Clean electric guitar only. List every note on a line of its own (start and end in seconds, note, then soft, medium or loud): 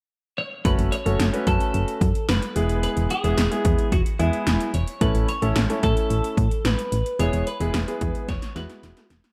0.38 0.46 C#5 loud
0.65 0.72 B4 loud
0.92 1.47 C#5 loud
1.47 2.29 A4 loud
2.29 2.80 B4 medium
2.83 2.91 B4 medium
3.11 3.88 G#4 medium
3.93 4.00 F#4 medium
4.20 4.76 E4 medium
4.75 5.00 C#5 medium
5.02 5.27 B4 medium
5.29 5.79 C#5 medium
5.84 6.65 A4 medium
6.65 7.20 B4 medium
7.20 7.47 C#5 medium
7.47 8.28 B4 medium
8.29 8.54 C#5 medium
8.56 9.07 B4 medium